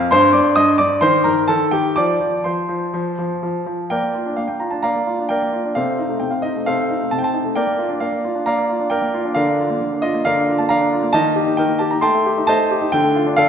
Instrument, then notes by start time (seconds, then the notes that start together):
grand piano
Already playing: F2 F6
0.11 G2 C5 C6
0.33 G2 D5 D6
0.56 G2 D#5 D#6
0.78 G2 D5 D6
1.01 D#3 C5 C6
1.24 D#3 A#4 A#5
1.48 D#3 A4 A5
1.71 D#3 G4 G5
1.96 F3 D5 D6
2.20 F3
2.44 F3 C5 C6
2.69 F3
2.94 F3
3.18 F3
3.43 F3
3.66 F3
3.90 A#3 A#4 D5 G5
4.03 A#3
4.15 F4
4.26 D4
4.36 A#3 F5
4.48 A#3 G5
4.60 F4 A#5
4.71 D4 A5
4.83 A#3 D5 F5 A#5
4.95 A#3
5.07 F4
5.19 D4
5.29 A#3 A#4 D5 G5
5.42 A#3
5.52 F4
5.65 D4
5.75 C3 A4 C5 F5
5.87 C4
5.98 D#4
6.09 A3
6.20 C3 G5
6.31 C4 F5
6.42 D#4 D#5
6.56 A3
6.66 C3 A4 C5 F5
6.79 C4
6.90 D#4
7.01 A3
7.11 C3 A5
7.19 C4 G5
7.24 A5
7.34 D#4
7.45 A3
7.55 A#3 A#4 D5 G5
7.67 A#3
7.78 F4
7.89 D4
8.00 A#3 A#4 D5 F5
8.12 A#3
8.25 F4
8.35 D4
8.46 A#3 D5 F5 A#5
8.58 A#3
8.69 F4
8.80 D4
8.90 A#3 A#4 D5 G5
9.02 A#3
9.14 F4
9.25 D4
9.34 D3 A#4 D5 F5
9.48 D4
9.59 F4
9.70 A#3
9.81 D3
9.93 D4
10.02 F4 D#5
10.14 A#3
10.25 D3 A#4 D5 F5
10.37 D4
10.48 F4
10.58 A#3 A5
10.69 D3 D5 F5 A#5
10.81 D4
10.92 F4
11.03 A#3
11.13 D#3 D#5 A5
11.25 A#3
11.36 G4
11.46 D#4
11.57 D#3 A#4 D#5 G5
11.68 A#3
11.79 G4 A5
11.91 D#4 A#5
12.01 A3 G5 A5 C6
12.14 A3
12.26 G4
12.37 D#4
12.47 A3 C5 D#5 A5
12.59 A3
12.71 G4
12.82 D#4
12.92 D3 G5
13.04 A3
13.15 F4
13.26 D4
13.37 D3 A4 D5 F5